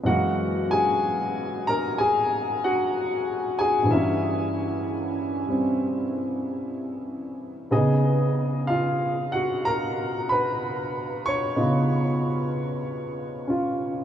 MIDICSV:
0, 0, Header, 1, 2, 480
1, 0, Start_track
1, 0, Tempo, 958466
1, 25, Time_signature, 4, 2, 24, 8
1, 7033, End_track
2, 0, Start_track
2, 0, Title_t, "Grand piano"
2, 0, Program_c, 0, 0
2, 0, Control_c, 0, 64, 127
2, 18, Note_on_c, 0, 42, 48
2, 25, Note_on_c, 0, 52, 46
2, 31, Control_c, 0, 64, 0
2, 31, Note_on_c, 0, 78, 77
2, 33, Note_on_c, 0, 56, 49
2, 37, Note_on_c, 0, 66, 64
2, 42, Note_on_c, 0, 58, 56
2, 126, Control_c, 0, 64, 127
2, 338, Note_off_c, 0, 66, 0
2, 355, Note_on_c, 0, 80, 89
2, 365, Note_off_c, 0, 78, 0
2, 365, Note_on_c, 0, 68, 67
2, 819, Note_off_c, 0, 68, 0
2, 838, Note_on_c, 0, 82, 87
2, 848, Note_off_c, 0, 80, 0
2, 848, Note_on_c, 0, 70, 73
2, 983, Note_off_c, 0, 70, 0
2, 993, Note_off_c, 0, 82, 0
2, 993, Note_on_c, 0, 80, 89
2, 1003, Note_on_c, 0, 68, 69
2, 1301, Note_off_c, 0, 68, 0
2, 1324, Note_on_c, 0, 78, 77
2, 1325, Note_on_c, 0, 66, 59
2, 1326, Note_off_c, 0, 80, 0
2, 1779, Note_off_c, 0, 66, 0
2, 1796, Note_on_c, 0, 80, 89
2, 1806, Note_on_c, 0, 68, 67
2, 1812, Note_off_c, 0, 78, 0
2, 1918, Note_on_c, 0, 43, 48
2, 1927, Note_off_c, 0, 52, 0
2, 1935, Note_on_c, 0, 52, 42
2, 1942, Note_off_c, 0, 42, 0
2, 1942, Note_off_c, 0, 68, 0
2, 1947, Note_off_c, 0, 58, 0
2, 1949, Note_off_c, 0, 56, 0
2, 1951, Control_c, 0, 64, 0
2, 1952, Note_off_c, 0, 80, 0
2, 1954, Note_on_c, 0, 58, 43
2, 1957, Note_on_c, 0, 76, 69
2, 1964, Note_on_c, 0, 64, 57
2, 1972, Note_on_c, 0, 61, 54
2, 2055, Control_c, 0, 64, 127
2, 2734, Note_on_c, 0, 55, 36
2, 2738, Note_off_c, 0, 76, 0
2, 2741, Note_off_c, 0, 64, 0
2, 2750, Note_on_c, 0, 60, 41
2, 3851, Note_off_c, 0, 43, 0
2, 3859, Note_off_c, 0, 52, 0
2, 3859, Note_off_c, 0, 55, 0
2, 3860, Note_on_c, 0, 49, 56
2, 3863, Note_on_c, 0, 59, 51
2, 3865, Note_on_c, 0, 63, 53
2, 3866, Note_on_c, 0, 68, 64
2, 3867, Note_off_c, 0, 60, 0
2, 3868, Note_on_c, 0, 75, 77
2, 3869, Note_off_c, 0, 58, 0
2, 3870, Control_c, 0, 64, 0
2, 3873, Note_off_c, 0, 63, 0
2, 3878, Note_off_c, 0, 61, 0
2, 3880, Note_on_c, 0, 63, 61
2, 3947, Control_c, 0, 64, 127
2, 4326, Note_off_c, 0, 75, 0
2, 4332, Note_off_c, 0, 63, 0
2, 4344, Note_on_c, 0, 77, 76
2, 4356, Note_on_c, 0, 65, 63
2, 4657, Note_off_c, 0, 65, 0
2, 4668, Note_on_c, 0, 78, 76
2, 4681, Note_off_c, 0, 77, 0
2, 4683, Note_on_c, 0, 66, 59
2, 4812, Note_off_c, 0, 78, 0
2, 4820, Note_off_c, 0, 66, 0
2, 4834, Note_on_c, 0, 82, 89
2, 4842, Note_on_c, 0, 70, 68
2, 5140, Note_off_c, 0, 70, 0
2, 5155, Note_on_c, 0, 83, 81
2, 5166, Note_off_c, 0, 82, 0
2, 5168, Note_on_c, 0, 71, 73
2, 5620, Note_off_c, 0, 71, 0
2, 5637, Note_on_c, 0, 85, 97
2, 5647, Note_off_c, 0, 83, 0
2, 5649, Note_on_c, 0, 73, 71
2, 5781, Note_off_c, 0, 49, 0
2, 5783, Note_off_c, 0, 59, 0
2, 5785, Note_off_c, 0, 68, 0
2, 5788, Note_on_c, 0, 49, 45
2, 5790, Note_on_c, 0, 63, 49
2, 5791, Note_on_c, 0, 59, 42
2, 5795, Note_on_c, 0, 65, 50
2, 6748, Note_on_c, 0, 61, 45
2, 6753, Note_off_c, 0, 65, 0
2, 6761, Note_on_c, 0, 65, 53
2, 7033, Note_off_c, 0, 49, 0
2, 7033, Note_off_c, 0, 59, 0
2, 7033, Note_off_c, 0, 61, 0
2, 7033, Note_off_c, 0, 63, 0
2, 7033, Note_off_c, 0, 65, 0
2, 7033, Note_off_c, 0, 73, 0
2, 7033, Note_off_c, 0, 85, 0
2, 7033, End_track
0, 0, End_of_file